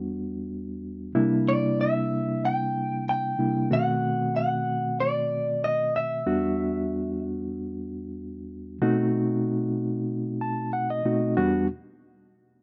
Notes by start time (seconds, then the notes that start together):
Already playing: E2 G3 B3 D4 F#4
1.15 C3 G3 A#3 D4 E4
1.49 D5
1.81 E5
2.45 G5
3.09 G5
3.39 C3 G3 A#3 D4 E4
3.71 B2 D#3 A3 C4 F#4 F#5
4.36 F#5
5.00 D5
5.64 D#5
5.96 E5
6.26 E2 G3 B3 D4 F#4
8.82 B2 A3 C4 D#4 F#4
10.41 A5
10.73 F#5
10.90 D#5
11.05 B2 A3 C4 D#4 F#4
11.37 E2 G3 B3 D4 F#4